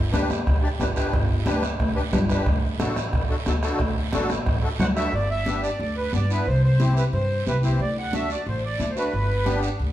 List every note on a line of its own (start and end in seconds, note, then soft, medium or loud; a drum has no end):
0.12 0.40 D2 medium
0.12 0.30 D4 medium
0.12 0.30 G4 medium
0.12 0.31 B4 medium
0.12 bombo rim medium
0.12 high conga medium
0.12 short guiro medium
0.30 bombo rim medium
0.30 high conga medium
0.30 short guiro medium
0.46 0.60 D2 loud
0.46 bombo low medium
0.46 bombo rim medium
0.46 high conga soft
0.46 long guiro medium
0.62 0.68 D4 medium
0.62 0.69 G4 medium
0.62 0.69 D5 medium
0.79 1.07 G1 medium
0.79 0.85 D4 medium
0.79 0.85 G4 medium
0.79 0.86 B4 medium
0.79 bombo low medium
0.79 bombo rim medium
0.79 high conga medium
0.79 short guiro medium
0.95 1.13 D4 medium
0.95 1.13 G4 medium
0.95 1.14 B4 medium
0.95 bombo rim medium
0.95 short guiro medium
1.13 1.40 G1 loud
1.13 bombo low medium
1.13 bombo rim medium
1.13 long guiro medium
1.29 high conga soft
1.45 1.73 D2 medium
1.45 1.63 D4 medium
1.45 1.64 G4 medium
1.45 1.64 B4 medium
1.45 bombo rim medium
1.45 high conga medium
1.45 short guiro medium
1.63 bombo rim medium
1.63 high conga medium
1.63 short guiro medium
1.79 1.93 D2 loud
1.79 bombo low medium
1.79 bombo rim medium
1.79 high conga soft
1.79 long guiro medium
1.95 2.02 D4 medium
1.95 2.02 G4 medium
1.95 2.02 B4 medium
2.12 2.40 G1 loud
2.12 2.18 D4 medium
2.12 2.19 G4 medium
2.12 2.19 B4 medium
2.12 bombo low medium
2.12 bombo rim medium
2.12 high conga medium
2.12 low conga medium
2.12 short guiro medium
2.29 2.46 D4 medium
2.29 2.46 G4 medium
2.29 2.47 B4 medium
2.29 bombo rim medium
2.29 short guiro medium
2.46 2.73 D2 loud
2.46 bombo low medium
2.46 bombo rim medium
2.46 long guiro medium
2.63 high conga soft
2.79 3.06 A1 loud
2.79 2.97 D4 medium
2.79 2.97 F#4 medium
2.79 2.98 A4 medium
2.79 bombo rim medium
2.79 high conga medium
2.79 short guiro medium
2.96 bombo rim medium
2.96 high conga medium
2.96 short guiro medium
3.13 3.26 A1 medium
3.13 bombo low medium
3.13 bombo rim medium
3.13 high conga soft
3.13 long guiro medium
3.29 3.35 D4 medium
3.29 3.35 F#4 medium
3.29 3.36 A4 medium
3.46 3.73 D2 loud
3.46 3.52 D4 medium
3.46 3.52 F#4 medium
3.46 3.53 A4 medium
3.46 bombo rim medium
3.46 high conga medium
3.46 short guiro medium
3.62 3.80 D4 medium
3.62 3.81 F#4 medium
3.62 3.81 A4 medium
3.62 bombo rim medium
3.62 short guiro medium
3.79 4.06 D2 loud
3.79 bombo low medium
3.79 bombo rim medium
3.79 long guiro medium
3.96 high conga soft
4.12 4.40 A1 medium
4.12 4.30 D4 medium
4.12 4.30 F#4 medium
4.12 4.31 A4 medium
4.12 bombo rim medium
4.12 high conga medium
4.12 short guiro medium
4.30 bombo rim medium
4.30 high conga medium
4.30 short guiro medium
4.46 4.60 A1 loud
4.46 bombo low medium
4.46 bombo rim medium
4.46 high conga soft
4.46 long guiro medium
4.63 4.69 D4 medium
4.63 4.69 F#4 medium
4.63 4.69 A4 medium
4.80 5.06 D2 loud
4.80 4.86 D4 medium
4.80 4.85 F#4 medium
4.80 4.86 C5 medium
4.80 4.87 F#5 loud
4.80 bombo rim medium
4.80 high conga medium
4.80 low conga medium
4.80 short guiro medium
4.95 5.12 D4 medium
4.95 5.13 F#4 medium
4.95 5.13 A4 medium
4.95 5.14 E5 medium
4.95 bombo rim medium
4.95 short guiro medium
5.13 5.66 G1 medium
5.13 5.29 D5 medium
5.13 long guiro medium
5.30 5.61 E5 medium
5.30 high conga soft
5.46 5.70 B3 medium
5.46 5.70 D4 medium
5.46 5.70 G4 medium
5.46 high conga medium
5.46 short guiro medium
5.63 5.79 D5 medium
5.63 short guiro medium
5.79 6.06 D2 medium
5.79 5.96 D5 medium
5.79 high conga soft
5.79 long guiro medium
5.98 6.12 B4 medium
6.13 6.40 G2 medium
6.13 6.19 B3 medium
6.13 6.19 D4 medium
6.13 6.19 G4 medium
6.13 6.31 D5 medium
6.13 high conga medium
6.13 short guiro medium
6.29 6.46 B3 medium
6.29 6.46 D4 medium
6.29 6.46 E4 medium
6.29 6.48 B4 medium
6.29 short guiro medium
6.47 7.00 C2 medium
6.47 6.62 C5 medium
6.47 long guiro medium
6.63 6.94 C5 medium
6.63 high conga soft
6.79 7.03 C4 medium
6.79 7.03 E4 medium
6.79 7.03 G4 medium
6.79 high conga medium
6.79 short guiro medium
6.97 7.04 B4 medium
6.97 short guiro medium
7.13 7.40 G2 medium
7.13 7.45 C5 medium
7.13 high conga soft
7.13 long guiro medium
7.46 7.73 C2 medium
7.46 7.52 C4 medium
7.46 7.52 E4 medium
7.46 7.52 G4 medium
7.46 7.63 B4 medium
7.46 high conga medium
7.46 short guiro medium
7.63 7.80 C4 medium
7.63 7.80 E4 medium
7.63 7.80 G4 medium
7.63 7.81 C5 medium
7.63 high conga medium
7.63 short guiro medium
7.79 8.33 D2 medium
7.79 7.96 D5 medium
7.79 long guiro medium
7.97 8.15 F#5 medium
7.97 high conga soft
8.12 8.36 A3 medium
8.12 8.36 D4 medium
8.12 8.36 F#4 medium
8.12 8.30 E5 medium
8.12 high conga medium
8.12 short guiro medium
8.30 8.46 D5 medium
8.30 short guiro medium
8.46 8.73 A1 medium
8.46 8.63 C5 medium
8.46 high conga soft
8.46 long guiro medium
8.65 8.91 D5 medium
8.79 9.06 D2 medium
8.79 8.85 A3 medium
8.79 8.85 D4 medium
8.79 8.85 E4 medium
8.79 high conga medium
8.79 short guiro medium
8.90 8.97 C5 medium
8.95 9.12 A3 medium
8.95 9.13 D4 medium
8.95 9.13 F#4 medium
8.95 9.60 B4 medium
8.95 short guiro medium
9.13 9.67 G1 medium
9.13 long guiro medium
9.30 high conga soft
9.45 9.69 B3 medium
9.45 9.69 D4 medium
9.45 9.69 G4 medium
9.45 high conga medium
9.45 short guiro medium
9.63 short guiro medium
9.80 9.92 D2 medium
9.80 high conga soft
9.80 long guiro medium